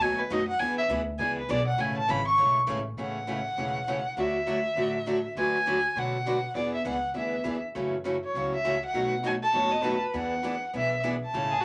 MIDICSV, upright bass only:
0, 0, Header, 1, 2, 480
1, 0, Start_track
1, 0, Key_signature, 3, "major"
1, 0, Tempo, 298063
1, 965, Time_signature, 4, 2, 24, 8
1, 18756, End_track
2, 0, Start_track
2, 0, Title_t, "Upright bass"
2, 0, Program_c, 0, 32
2, 0, Note_on_c, 0, 39, 76
2, 465, Note_off_c, 0, 39, 0
2, 489, Note_on_c, 0, 42, 80
2, 952, Note_off_c, 0, 42, 0
2, 963, Note_on_c, 0, 40, 81
2, 1418, Note_off_c, 0, 40, 0
2, 1428, Note_on_c, 0, 38, 98
2, 1900, Note_off_c, 0, 38, 0
2, 1921, Note_on_c, 0, 37, 88
2, 2387, Note_off_c, 0, 37, 0
2, 2402, Note_on_c, 0, 35, 89
2, 2867, Note_off_c, 0, 35, 0
2, 2882, Note_on_c, 0, 33, 83
2, 3347, Note_off_c, 0, 33, 0
2, 3375, Note_on_c, 0, 32, 102
2, 3833, Note_off_c, 0, 32, 0
2, 3851, Note_on_c, 0, 35, 81
2, 4311, Note_off_c, 0, 35, 0
2, 4330, Note_on_c, 0, 33, 87
2, 4774, Note_off_c, 0, 33, 0
2, 4784, Note_on_c, 0, 33, 71
2, 5558, Note_off_c, 0, 33, 0
2, 5746, Note_on_c, 0, 28, 67
2, 6520, Note_off_c, 0, 28, 0
2, 6708, Note_on_c, 0, 38, 69
2, 7481, Note_off_c, 0, 38, 0
2, 7657, Note_on_c, 0, 33, 76
2, 8434, Note_off_c, 0, 33, 0
2, 8620, Note_on_c, 0, 38, 73
2, 9396, Note_off_c, 0, 38, 0
2, 9592, Note_on_c, 0, 47, 73
2, 10364, Note_off_c, 0, 47, 0
2, 10546, Note_on_c, 0, 40, 77
2, 10935, Note_off_c, 0, 40, 0
2, 11027, Note_on_c, 0, 37, 83
2, 11441, Note_off_c, 0, 37, 0
2, 11510, Note_on_c, 0, 38, 69
2, 11923, Note_off_c, 0, 38, 0
2, 11988, Note_on_c, 0, 40, 67
2, 12401, Note_off_c, 0, 40, 0
2, 12480, Note_on_c, 0, 42, 73
2, 13248, Note_off_c, 0, 42, 0
2, 13435, Note_on_c, 0, 37, 69
2, 14205, Note_off_c, 0, 37, 0
2, 14396, Note_on_c, 0, 35, 72
2, 15166, Note_off_c, 0, 35, 0
2, 15358, Note_on_c, 0, 30, 77
2, 16128, Note_off_c, 0, 30, 0
2, 16323, Note_on_c, 0, 40, 84
2, 17091, Note_off_c, 0, 40, 0
2, 17290, Note_on_c, 0, 35, 69
2, 18056, Note_off_c, 0, 35, 0
2, 18255, Note_on_c, 0, 33, 75
2, 18756, Note_off_c, 0, 33, 0
2, 18756, End_track
0, 0, End_of_file